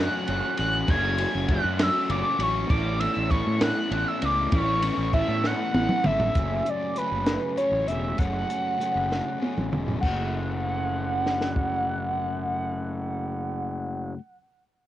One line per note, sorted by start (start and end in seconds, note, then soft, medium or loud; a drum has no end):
0.00 0.24 F#2 medium
0.00 0.25 C#3 medium
0.00 0.25 F#3 loud
0.00 0.27 A3 medium
0.00 0.27 C#4 medium
0.00 0.28 F#4 medium
0.00 0.27 G#4 loud
0.00 0.29 A4 loud
0.00 0.58 F#5 medium
0.00 0.59 F#6 loud
0.26 0.40 F#1 loud
0.26 0.56 F#2 medium
0.26 0.57 C#3 medium
0.26 0.58 F#3 medium
0.26 0.59 A3 loud
0.26 0.59 C#4 loud
0.26 0.58 F#4 medium
0.26 0.58 G#4 loud
0.26 ride medium
0.30 0.59 A4 medium
0.57 0.83 A1 medium
0.57 0.86 F#2 medium
0.57 0.86 C#3 medium
0.57 0.88 F#3 medium
0.57 0.88 A3 medium
0.57 0.88 C#4 loud
0.57 0.88 F#4 medium
0.57 0.89 G#4 medium
0.57 0.89 A4 medium
0.57 0.87 F#5 medium
0.57 0.91 F#6 loud
0.57 ride medium
0.87 1.25 F#1 loud
0.87 1.16 F#2 loud
0.87 1.17 C#3 medium
0.87 1.18 F#3 loud
0.87 1.19 A3 loud
0.87 1.19 C#4 loud
0.87 1.18 F#4 medium
0.87 1.19 G#4 loud
0.87 1.20 A4 loud
0.87 1.49 G#5 medium
0.87 1.53 G#6 loud
0.87 kick loud
0.87 ride loud
1.17 1.48 F#2 loud
1.17 1.49 C#3 medium
1.17 1.48 F#3 medium
1.17 1.50 A3 loud
1.17 1.50 C#4 loud
1.17 1.48 F#4 loud
1.17 1.50 G#4 loud
1.17 1.50 A4 loud
1.17 ride medium
1.35 1.59 F#1 medium
1.48 1.78 F#2 medium
1.48 1.79 C#3 medium
1.48 1.80 F#3 loud
1.48 1.81 A3 loud
1.48 1.81 C#4 medium
1.48 1.79 F#4 loud
1.48 1.81 G#4 medium
1.48 1.80 A4 loud
1.48 1.79 F#5 medium
1.48 1.84 F#6 loud
1.48 kick medium
1.48 ride medium
1.64 1.88 F#2 medium
1.79 2.08 F#2 medium
1.79 2.09 C#3 medium
1.79 2.08 F#3 medium
1.79 2.10 A3 medium
1.79 2.11 C#4 loud
1.79 2.10 F#4 medium
1.79 2.10 G#4 medium
1.79 2.12 A4 medium
1.79 2.09 E5 medium
1.79 2.10 E6 loud
1.79 snare loud
1.79 ride loud
2.09 2.22 F#1 loud
2.09 2.37 F#2 medium
2.09 2.38 C#3 loud
2.09 2.38 F#3 medium
2.09 2.39 A3 medium
2.09 2.40 C#4 medium
2.09 2.39 F#4 medium
2.09 2.39 G#4 loud
2.09 2.40 A4 medium
2.09 2.39 D5 medium
2.09 2.44 D6 medium
2.09 ride medium
2.38 2.63 A1 loud
2.38 2.67 F#2 medium
2.38 2.68 C#3 medium
2.38 2.68 F#3 medium
2.38 2.69 A3 medium
2.38 2.70 C#4 medium
2.38 2.68 F#4 loud
2.38 2.68 G#4 loud
2.38 2.70 A4 loud
2.38 2.70 C#5 medium
2.38 ride medium
2.42 2.69 C#6 medium
2.68 3.06 A1 loud
2.68 2.99 A2 loud
2.68 3.00 E3 loud
2.68 3.00 A3 medium
2.68 3.00 B3 medium
2.68 3.01 C#4 loud
2.68 3.01 E4 loud
2.68 3.02 A4 loud
2.68 2.99 D5 medium
2.68 3.01 D6 medium
2.68 kick loud
2.68 ride loud
2.99 3.29 A2 loud
2.99 3.30 E3 medium
2.99 3.29 A3 medium
2.99 3.30 B3 medium
2.99 3.30 C#4 loud
2.99 3.31 E4 loud
2.99 3.31 A4 loud
2.99 3.14 E5 medium
2.99 3.13 E6 medium
2.99 ride medium
3.14 3.40 A1 medium
3.14 3.30 E5 medium
3.14 3.32 E6 medium
3.28 3.61 A2 medium
3.28 3.62 E3 medium
3.28 3.60 A3 loud
3.28 3.62 B3 medium
3.28 3.63 C#4 loud
3.28 3.63 E4 loud
3.28 3.61 A4 loud
3.28 3.60 C#5 medium
3.28 3.64 C#6 medium
3.28 kick medium
3.28 ride medium
3.47 3.71 A2 loud
3.60 3.91 A2 medium
3.60 3.91 E3 medium
3.60 3.88 A3 medium
3.60 3.91 B3 medium
3.60 3.92 C#4 loud
3.60 3.92 E4 loud
3.60 3.91 A4 medium
3.60 4.07 F#5 medium
3.60 4.09 F#6 loud
3.60 snare loud
3.60 ride loud
3.89 4.03 A1 loud
3.89 4.19 A2 medium
3.89 4.20 E3 loud
3.89 4.20 A3 medium
3.89 4.20 B3 medium
3.89 4.22 C#4 medium
3.89 4.22 A4 medium
3.89 ride medium
3.93 4.21 E4 medium
4.08 4.22 E5 medium
4.08 4.26 E6 medium
4.20 4.47 C#2 medium
4.20 4.49 A2 medium
4.20 4.50 E3 medium
4.20 4.50 A3 medium
4.20 4.49 B3 medium
4.20 4.50 C#4 loud
4.20 4.51 E4 medium
4.20 4.52 A4 loud
4.20 4.53 D5 medium
4.20 ride medium
4.25 4.53 D6 medium
4.50 4.89 A1 loud
4.50 4.80 A2 loud
4.50 4.81 E3 loud
4.50 4.81 A3 medium
4.50 4.81 B3 loud
4.50 4.82 C#4 medium
4.50 4.83 E4 loud
4.50 4.83 A4 medium
4.50 6.01 C#5 medium
4.50 5.10 C#6 medium
4.50 kick loud
4.50 ride loud
4.81 5.11 A2 medium
4.81 5.12 E3 medium
4.81 5.13 A3 medium
4.81 5.13 B3 loud
4.81 5.13 C#4 loud
4.81 5.14 E4 loud
4.81 5.15 A4 loud
4.81 ride medium
4.97 5.22 A1 medium
5.12 5.42 A2 medium
5.12 5.43 E3 medium
5.12 5.41 A3 loud
5.12 5.44 B3 medium
5.12 5.44 C#4 loud
5.12 5.44 E4 loud
5.12 5.44 A4 loud
5.12 5.48 E5 loud
5.12 kick medium
5.12 ride medium
5.28 5.53 A2 medium
5.42 5.73 A2 medium
5.42 5.74 E3 medium
5.42 5.71 A3 medium
5.42 5.73 B3 medium
5.42 5.74 C#4 medium
5.42 5.75 E4 loud
5.42 5.73 A4 loud
5.42 snare medium
5.46 6.07 F#5 loud
5.72 5.86 A1 loud
5.72 6.05 A2 medium
5.72 6.04 E3 medium
5.72 6.03 A3 medium
5.72 6.05 B3 medium
5.72 6.06 C#4 medium
5.72 6.05 A4 medium
5.72 high tom medium
5.76 6.06 E4 loud
5.89 mid tom medium
6.04 6.30 G#1 medium
6.04 6.34 A2 medium
6.04 6.34 E3 medium
6.04 6.33 A3 medium
6.04 6.34 B3 medium
6.04 6.35 C#4 medium
6.04 6.34 E4 loud
6.04 6.34 A4 loud
6.04 6.71 E5 loud
6.04 mid tom loud
6.20 floor tom loud
6.35 6.60 F#1 loud
6.35 8.16 F#2 medium
6.35 6.95 C#3 medium
6.35 6.66 F#3 medium
6.35 6.66 A3 medium
6.35 6.65 C#4 medium
6.35 6.65 G#4 medium
6.35 kick loud
6.35 closed hi-hat medium
6.66 6.94 F#3 medium
6.66 6.95 A3 medium
6.66 6.96 C#4 medium
6.66 6.95 G#4 medium
6.66 6.99 D5 medium
6.66 closed hi-hat medium
6.95 7.55 C#3 medium
6.95 7.26 F#3 medium
6.95 7.26 A3 medium
6.95 7.26 C#4 medium
6.95 7.26 G#4 medium
6.95 7.57 B4 medium
6.95 closed hi-hat medium
7.12 7.36 F#1 medium
7.26 7.56 F#3 medium
7.26 7.56 A3 medium
7.26 7.57 C#4 medium
7.26 7.57 G#4 medium
7.26 snare loud
7.26 closed hi-hat medium
7.56 8.17 C#3 medium
7.56 7.88 F#3 medium
7.56 7.87 A3 medium
7.56 7.87 C#4 medium
7.56 7.87 G#4 medium
7.56 7.89 C#5 medium
7.56 closed hi-hat medium
7.72 7.84 A1 medium
7.87 8.13 E1 medium
7.87 8.16 F#3 medium
7.87 8.17 A3 medium
7.87 8.17 C#4 medium
7.87 8.18 G#4 medium
7.87 8.20 E5 medium
7.87 closed hi-hat medium
8.16 8.43 F#1 loud
8.16 8.79 F#2 medium
8.16 8.77 C#3 medium
8.16 8.49 F#3 medium
8.16 8.48 A3 medium
8.16 8.48 C#4 medium
8.16 8.48 G#4 medium
8.16 9.72 F#5 loud
8.16 kick loud
8.16 closed hi-hat medium
8.49 8.79 F#3 medium
8.49 8.79 A3 medium
8.49 8.80 C#4 medium
8.49 8.80 G#4 medium
8.49 closed hi-hat medium
8.78 9.38 C#3 medium
8.78 9.09 F#3 medium
8.78 9.09 A3 medium
8.78 9.08 C#4 medium
8.78 9.08 G#4 medium
8.78 closed hi-hat medium
8.95 9.20 F#1 medium
9.10 9.38 F#3 medium
9.10 9.39 A3 medium
9.10 9.40 C#4 medium
9.10 9.40 G#4 medium
9.10 snare medium
9.39 10.00 C#3 medium
9.39 9.71 F#3 medium
9.39 9.71 A3 medium
9.39 9.71 C#4 medium
9.39 9.71 G#4 medium
9.39 high tom medium
9.57 9.69 A1 medium
9.57 mid tom medium
9.72 9.97 E1 medium
9.72 10.02 F#3 medium
9.72 10.03 A3 medium
9.72 10.03 C#4 medium
9.72 10.03 G#4 medium
9.72 mid tom medium
9.88 floor tom medium
10.01 14.13 F#1 medium
10.01 14.16 F#2 medium
10.01 14.17 C#3 medium
10.01 14.17 F#3 medium
10.01 14.18 A3 medium
10.01 14.11 F#5 medium
10.01 kick loud
10.01 crash medium
10.05 14.19 C#4 medium
10.05 14.19 G#4 medium
11.26 snare medium
11.41 snare medium
11.56 kick medium